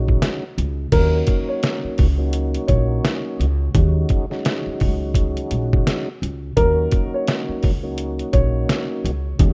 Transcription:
Already playing: A#1 D#2 F#3 G#3 C#4 D#4 F#4
0.08 kick
0.22 snare, closed hi-hat
0.58 C#2, closed hi-hat
0.91 D#2 F#3 A#3 C#4 D#4 F#4 A#4, kick, closed hi-hat, crash
1.27 kick, closed hi-hat
1.48 C#5
1.63 snare, closed hi-hat
1.84 muted upright bass stroke
1.98 C#2, kick, open hi-hat
2.17 F#3 A#3 C#4 D#4 F#4
2.33 closed hi-hat
2.54 closed hi-hat
2.68 A#1 C#5, kick, closed hi-hat
3.05 snare, closed hi-hat
3.40 C#2, closed hi-hat
3.73 D#2 F#3 G#3 C#4 D#4 F#4, kick, closed hi-hat
4.09 kick, closed hi-hat
4.30 D#2 F#3 G#3 C#4 D#4 F#4, snare
4.45 snare, closed hi-hat
4.67 muted upright bass stroke
4.80 C#2, kick, open hi-hat
5.14 kick, closed hi-hat
5.37 closed hi-hat
5.51 A#1, closed hi-hat
5.73 kick
5.87 snare, closed hi-hat
6.22 C#2, closed hi-hat
6.56 D#2 F#3 A#3 C#4 D#4 F#4 A#4, kick, closed hi-hat
6.92 kick, closed hi-hat
7.14 C#5
7.28 snare, closed hi-hat
7.49 muted upright bass stroke
7.63 C#2, kick, open hi-hat
7.82 F#3 A#3 C#4 D#4 F#4
7.98 closed hi-hat
8.19 closed hi-hat
8.33 A#1 C#5, kick, closed hi-hat
8.69 snare, closed hi-hat
9.04 C#2, closed hi-hat
9.38 D#2 F#3 G#3 C#4 D#4 F#4, kick, closed hi-hat

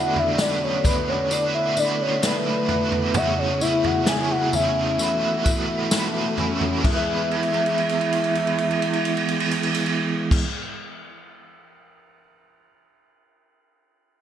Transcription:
Already playing: D3 A3 B3 D4 F#4 A4 B4 F#5
0.16 E5, floor tom
0.38 B2 F#3 A3 D4 F#4 B4 D5, snare, tambourine
0.64 C#5
0.84 B3 D4 F#4 B4, kick, floor tom, tambourine
0.88 A3
1.09 C#5
1.30 A3 D4 E4 F#4 D5, tambourine
1.35 B4
1.55 E5
1.76 D4 F#4 B4 D5, tambourine
1.81 A3
2.02 C#5
2.23 B2 F#3 A3 D4 F#4 B4, snare, tambourine
2.68 B3 D4 F#4 B4, floor tom
2.72 A3
2.92 floor tom
3.14 C#3 A3 B3 E4 F#4 G#4 C#5 E5, floor tom, tambourine
3.38 C#5
3.60 G#4 C#5 E5, tambourine
3.64 E4
3.84 F#5, floor tom
4.06 A3 B3 E4 G#4 C#5 G#5, snare, tambourine
4.31 F#5
4.52 C#4 G#4 C#5 E5, floor tom, tambourine
4.57 E4
4.98 E3 A3 E4 F#4 A4, tambourine
5.02 B4
5.44 E4 F#4 B4, kick, tambourine
5.49 A3
5.90 B2 E3 A3 E4 F#4 B4, snare, tambourine
6.36 C#4 E4 F#4 B4, floor tom
6.41 A3
6.61 floor tom
6.80 E3
6.84 E3 G#3 B3 E4 G#4 E5, kick, crash
6.91 G#4 B4
6.97 E5
7.31 crash
7.43 ride
7.54 crash
7.66 ride
7.78 crash
7.89 ride
8.01 crash
8.12 ride
8.24 crash
8.35 ride
8.47 crash
8.58 ride
8.71 crash
8.82 ride
8.93 crash
9.05 ride
9.17 crash
9.28 ride
9.40 crash
9.51 ride
9.63 crash
9.74 ride
9.86 crash
10.31 kick, crash

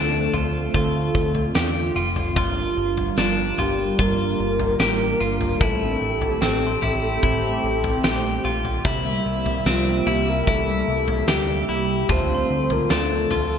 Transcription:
Already playing: D2 D3 A3 C4 D4 F4 A4
0.33 D2 F4, floor tom
0.74 D2 F4 A4, kick, floor tom
1.15 D2, kick
1.35 floor tom
1.55 E2 G4, snare
1.96 F1 F4
2.16 floor tom
2.36 G1 G3 D4 F4 A#4 F6, kick, floor tom
2.77 G1
2.97 floor tom
3.18 G1 D4 F4, snare
3.58 G1 F4 G4, floor tom
3.99 G1 F4 A#4, kick, floor tom
4.39 G1
4.60 floor tom
4.80 A1 G4, snare
5.20 G1 F4
5.41 floor tom
5.61 A1 A3 C4 E4 G4 A4 A5, kick, floor tom
6.01 A1
6.21 floor tom
6.41 A1 C4 G5, snare
6.67 C6
6.82 A1 E4, floor tom
7.23 A1 E4 A4, kick, floor tom
7.64 A1
7.84 floor tom
8.04 A#1 G4, snare
8.44 A#1 F4
8.65 floor tom
8.85 C2 C3 G3 A#3 E4 E5, kick, floor tom
9.25 C2
9.46 floor tom
9.66 C2 C4 F4, snare
10.07 C2 E4 G4, floor tom
10.30 A#4
10.47 C2 E4 A4, kick, floor tom
10.88 C2
11.08 floor tom
11.28 D2 G4, snare
11.69 C2 E4
12.09 D2 D3 A3 C4 F4 C5 A5, kick, floor tom
12.35 C6
12.50 D2
12.70 A#4, floor tom
12.90 D2 D4 A4, snare
13.31 D2 F4, floor tom

